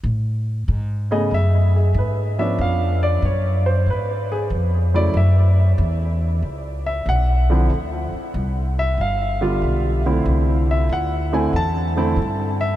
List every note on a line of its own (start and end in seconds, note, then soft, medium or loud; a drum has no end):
0.03 0.66 A2 medium
0.68 1.30 G#2 medium
1.11 1.30 C#3 medium
1.11 1.30 A3 medium
1.11 1.30 B3 medium
1.11 1.30 G#4 medium
1.11 1.32 D#5 medium
1.31 1.94 F#2 medium
1.31 1.74 E5 medium
1.76 1.96 G#4 soft
1.94 2.57 G#2 medium
1.94 2.38 B4 medium
2.39 3.20 F3 soft
2.39 3.20 B3 medium
2.39 3.20 C#4 medium
2.39 3.20 D4 medium
2.39 2.60 E5 medium
2.59 3.21 F2 medium
2.59 3.02 F5 medium
3.03 3.23 D5 medium
3.22 3.85 F#2 medium
3.22 3.66 C#5 medium
3.66 3.87 C5 medium
3.86 4.49 G#2 medium
3.90 4.30 B4 medium
4.32 4.44 G#4 medium
4.50 5.13 F2 medium
4.94 5.13 C#3 medium
4.94 5.14 F#3 medium
4.94 5.14 A3 medium
4.94 5.14 E4 medium
4.94 5.16 D5 medium
5.14 5.77 F#2 medium
5.14 5.76 E5 medium
5.78 6.41 E2 medium
6.42 7.05 C#2 medium
6.86 7.07 E5 medium
7.06 7.68 B1 medium
7.06 7.68 F#5 medium
7.50 7.69 D3 medium
7.50 7.69 F3 medium
7.50 7.69 C4 medium
7.50 7.70 E4 medium
7.70 8.10 D2 medium
8.12 muted upright bass stroke soft
8.34 8.96 C2 medium
8.79 8.99 E5 medium
8.98 9.60 G1 medium
8.98 9.60 F5 medium
9.41 10.01 D3 medium
9.41 10.01 G3 medium
9.41 10.01 B3 soft
9.41 10.01 F4 medium
9.62 10.24 B1 medium
10.06 10.86 D3 medium
10.06 10.87 A3 soft
10.06 10.86 C4 medium
10.06 10.87 E4 medium
10.25 10.88 C2 medium
10.71 10.91 E5 medium
10.89 11.51 D2 medium
10.89 11.32 F#5 medium
11.33 11.52 D3 medium
11.33 11.52 A3 medium
11.33 11.52 C4 medium
11.33 11.52 E4 medium
11.33 11.54 G#5 medium
11.53 12.15 E2 medium
11.53 12.57 A5 medium
11.97 12.16 D3 medium
11.97 12.16 A3 medium
11.97 12.16 C4 medium
11.97 12.16 E4 medium
12.16 12.76 G2 medium
12.61 12.76 E5 medium